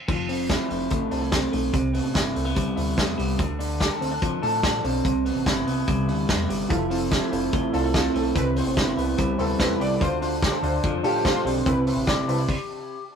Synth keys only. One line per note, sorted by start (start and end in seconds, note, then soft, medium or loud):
6.69 6.87 E4 loud
6.69 6.87 F4 medium
6.69 6.87 A4 loud
6.90 7.07 E4 medium
6.90 7.08 F4 medium
6.90 7.08 A4 medium
7.11 7.28 E4 medium
7.11 7.29 F4 medium
7.11 7.29 A4 medium
7.31 7.49 E4 medium
7.31 7.49 F4 medium
7.31 7.50 A4 medium
7.52 7.70 E4 medium
7.52 7.70 F4 medium
7.52 7.70 A4 medium
7.72 7.90 E4 medium
7.72 7.90 F4 medium
7.72 7.91 A4 loud
7.94 8.11 E4 loud
7.94 8.11 F4 loud
7.94 8.12 A4 loud
8.15 8.32 E4 medium
8.15 8.32 F4 medium
8.15 8.33 A4 medium
8.35 8.52 C4 loud
8.35 8.53 E4 medium
8.35 8.53 B4 loud
8.56 8.73 C4 medium
8.56 8.74 E4 medium
8.56 8.74 C5 medium
8.76 8.93 C4 medium
8.76 8.94 E4 medium
8.76 8.94 B4 medium
8.97 9.14 C4 medium
8.97 9.14 E4 medium
8.97 9.15 B4 medium
9.18 9.35 C4 medium
9.18 9.35 E4 medium
9.18 9.36 B4 medium
9.38 9.56 C4 loud
9.38 9.56 E4 medium
9.38 9.57 A4 loud
9.59 9.76 C4 loud
9.59 9.77 E4 loud
9.59 9.77 B4 loud
9.79 9.97 C4 medium
9.79 9.97 E4 medium
9.79 9.98 D5 loud
10.00 10.17 D4 loud
10.00 10.18 F4 medium
10.00 10.18 C5 loud
10.20 10.38 D4 medium
10.20 10.38 F4 medium
10.20 10.39 C5 medium
10.41 10.59 D4 medium
10.41 10.59 F4 medium
10.41 10.60 C5 medium
10.62 10.80 D4 medium
10.62 10.80 F4 medium
10.62 10.80 C5 medium
10.83 11.00 D4 medium
10.83 11.01 F4 medium
10.83 11.01 C5 medium
11.03 11.21 D4 loud
11.03 11.21 F4 loud
11.03 11.22 G4 loud
11.25 11.42 D4 loud
11.25 11.42 F4 loud
11.25 11.43 C5 loud
11.46 11.63 D4 medium
11.46 11.63 F4 medium
11.46 11.63 C5 medium
11.66 11.83 C4 loud
11.66 11.84 E4 medium
11.66 11.84 B4 loud
11.86 12.04 C4 medium
11.86 12.04 E4 medium
11.86 12.05 B4 medium
12.07 12.24 C4 medium
12.07 12.25 E4 medium
12.07 12.25 D5 medium
12.28 12.45 C4 medium
12.28 12.45 E4 medium
12.28 12.46 B4 medium